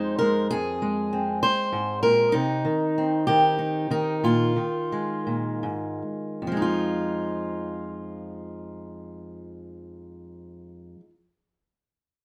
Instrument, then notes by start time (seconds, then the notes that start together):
steel-string acoustic guitar
Already playing: F2 G#3 C4 D#4 C5
0.19 G#3 A#4
0.51 F2 G#4
0.82 G#3
1.13 C4
1.43 C5
1.73 G#2
2.03 A#2 A#4
2.32 C3 D#4
2.65 D#3
2.98 C4
3.27 D#3 G4
3.58 D#4
3.91 D#3 D#4
4.24 A#2 F4
4.56 D#3
4.92 G#3
5.27 A#2
5.63 G#2
6.42 F2
6.47 F3
6.52 G#3
6.57 D#4
6.62 F4